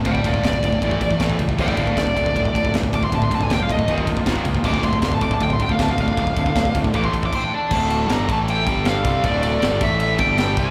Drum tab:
CC |----------------|x---------------|----------------|x---------------|
RD |x-x-x-x-x-x-x-x-|--x-x-x-x-x-x-x-|x-x-x-x-x-x-x-x-|--x-x-x-x-x-x-x-|
SD |----o-------o---|----o-------o---|----o-------o---|----o-------o---|
BD |oooooooooooooooo|oooooooooooooooo|oooooooooooooooo|oooooooooooooooo|

CC |------------x---|x---------------|----------------|
RD |x-x-x-x-x-x-----|--x-x-x-x-x-x-x-|x-x-x-x-x-x-x-x-|
SD |----o-----------|----o-------o---|----o-------o---|
BD |ooooooooooooo---|o-----o---o---o-|o-----o---o---o-|